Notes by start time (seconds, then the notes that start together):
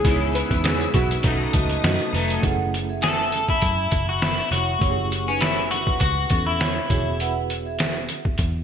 Already playing: G#4
0.03 C#2 C#3 G#3 B3 D#4 E4 C#5 B5 E6, kick, closed hi-hat
0.07 E4 G#4
0.34 B4, closed hi-hat
0.51 E2 D#4 B4, kick, closed hi-hat
0.64 E4 G#4 C#5, snare, closed hi-hat
0.81 closed hi-hat
0.93 B1 G#3 B3 E4 F#4, kick, closed hi-hat
1.11 D#4 B4, closed hi-hat
1.22 B1 B2 F#3 A3 C#4 D#4 F#4 B4 A5 D#6, kick, closed hi-hat
1.27 A4
1.53 C#2 F#4 D#5, kick, closed hi-hat
1.70 closed hi-hat
1.84 F#2 F#4 D#5, snare, closed hi-hat
1.99 closed hi-hat
2.12 F1 F#3 A3 D#4 B4, open hi-hat
2.30 closed hi-hat
2.41 F#1 A3 C#4 E4 A4 F#5, kick, closed hi-hat
2.46 G#4
2.74 closed hi-hat
2.89 G#4 E5
3.02 A4, snare, closed hi-hat
3.32 closed hi-hat
3.49 E4, kick
3.62 F#2, kick, closed hi-hat
3.92 F#1, kick, closed hi-hat
4.09 F#4
4.22 E4, snare, closed hi-hat
4.51 F1 E4 F#4 C#5, closed hi-hat
4.79 F#1 A3 C#4 E4 C#5, kick, closed hi-hat
4.84 G4
4.91 G#4
5.12 closed hi-hat
5.28 C#4 D#4 B4
5.41 E4 C#5, snare, closed hi-hat
5.71 F#4, closed hi-hat
5.87 D#4 B4, kick
6.00 C#2 F#4, kick, closed hi-hat
6.30 E2 C#4 A4, kick, closed hi-hat
6.46 E4
6.60 E4 C#5, snare, closed hi-hat
6.88 E1 B3 E4 F#4 C#5, kick, closed hi-hat
6.93 G#4
7.20 B4 F#5, closed hi-hat
7.50 closed hi-hat
7.66 G#4 E5
7.79 snare, closed hi-hat
8.09 closed hi-hat
8.25 kick
8.38 E2, kick, closed hi-hat